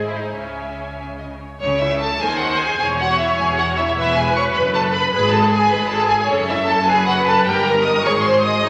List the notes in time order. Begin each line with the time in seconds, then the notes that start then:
Already playing: G#1 G#2 C5 D#5 G#5
0.06 E4
0.16 D#4
0.35 C#2 C#3 C#4 C#5 E5 G#5
0.98 E5
1.19 D#5
1.39 C#5
1.60 C#2 C#3 C#4 C#5
1.80 E4 E5
2.00 A4 A5
2.20 D#2 D#3 G#4 C5 G#5
2.40 F#4 F#5
2.59 G#4 G#5
2.79 E1 E2 G#4 C#5 G#5
2.99 F#4 F#5
3.19 E4 E5
3.39 E1 E2 G#4 G#5
3.58 F#4 F#5
3.77 E4 E5
3.87 E4 E5
3.97 E1 E2 E4 B4 E5
4.16 G#4 G#5
4.36 C#5 C#6
4.55 F#1 F#2 B4 B5
4.74 A4 A5
4.94 B4 B5
5.13 G#1 G#2 G#4 B4 B5
5.32 A4 A5
5.51 G#4 G#5
5.70 G#1 G#2 G#4 B4 B5
5.90 A4 A5
6.09 G#4 G#5
6.19 G#4 G#5
6.28 F#1 F#2 C#4 A4 C#5
6.48 E4 E5
6.67 A4 A5
6.87 G#4 B4 G#5
7.06 F#4 F#5
7.26 A4 A5
7.46 G1 G2 G4 A#4 G5
7.65 A#4 A#5
7.85 D#5 D#6
8.04 G#1 G#2 G#4 C#5 C#6
8.24 C5 C6
8.44 D#5 D#6
8.63 A1 A2 D#4 C#5 D#5